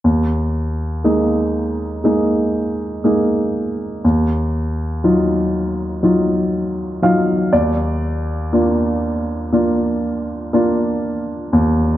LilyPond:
<<
  \new Staff \with { instrumentName = "Grand piano" } { \time 4/4 \key aes \dorian \tempo 4 = 60 r1 | r2. f''8 d''8 | r1 | }
  \new Staff \with { instrumentName = "Grand piano" } { \time 4/4 \key aes \dorian ees,4 <aes bes ees'>4 <aes bes ees'>4 <aes bes ees'>4 | ees,4 <ges ees' f'>4 <ges ees' f'>4 <ges ees' f'>8 ees,8~ | ees,8 <bes d' f'>4 <bes d' f'>4 <bes d' f'>4 ees,8 | }
>>